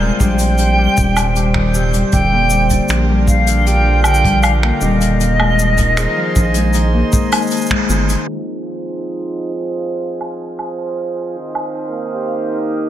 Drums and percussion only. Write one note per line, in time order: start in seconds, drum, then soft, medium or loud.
0.20 kick medium
0.20 shaker medium
0.39 closed hi-hat medium
0.39 shaker medium
0.58 closed hi-hat medium
0.58 shaker soft
0.97 kick loud
0.97 shaker medium
1.17 closed hi-hat medium
1.17 low woodblock medium
1.17 shaker medium
1.36 closed hi-hat soft
1.36 shaker soft
1.54 finger snap medium
1.54 kick medium
1.74 shaker medium
1.94 closed hi-hat medium
1.94 shaker medium
2.12 kick loud
2.12 closed hi-hat medium
2.12 shaker medium
2.50 shaker medium
2.70 kick soft
2.70 closed hi-hat medium
2.70 shaker soft
2.89 finger snap medium
2.89 closed hi-hat medium
2.89 shaker medium
3.28 kick medium
3.28 shaker medium
3.47 closed hi-hat medium
3.47 shaker medium
3.66 closed hi-hat medium
3.66 shaker soft
4.04 low woodblock medium
4.04 shaker medium
4.14 shaker medium
4.25 kick medium
4.25 closed hi-hat medium
4.43 closed hi-hat medium
4.43 low woodblock medium
4.43 shaker soft
4.63 finger snap medium
4.81 shaker medium
5.01 closed hi-hat medium
5.01 shaker medium
5.20 closed hi-hat medium
5.20 shaker soft
5.40 low woodblock medium
5.59 shaker medium
5.78 kick medium
5.78 closed hi-hat medium
5.78 shaker medium
5.97 finger snap medium
5.97 closed hi-hat medium
5.97 shaker soft
6.36 kick medium
6.36 shaker medium
6.54 closed hi-hat medium
6.54 shaker medium
6.73 closed hi-hat medium
6.73 shaker soft
7.12 kick loud
7.12 shaker medium
7.32 closed hi-hat medium
7.32 low woodblock medium
7.32 shaker soft
7.37 shaker soft
7.42 shaker soft
7.47 shaker soft
7.50 closed hi-hat medium
7.50 shaker soft
7.56 shaker soft
7.61 shaker soft
7.66 shaker soft
7.70 finger snap medium
7.70 kick medium
7.90 shaker medium
8.09 closed hi-hat medium
8.09 shaker medium
8.66 shaker medium
8.86 shaker soft
9.43 shaker medium
9.53 shaker soft
9.81 shaker soft
10.20 low woodblock medium
10.20 shaker medium
10.39 shaker medium
10.59 low woodblock medium
10.59 shaker soft
10.97 shaker medium
11.17 shaker soft
11.36 shaker soft
11.55 low woodblock medium
11.75 shaker medium
11.94 shaker medium
12.14 shaker soft
12.52 shaker medium
12.70 shaker soft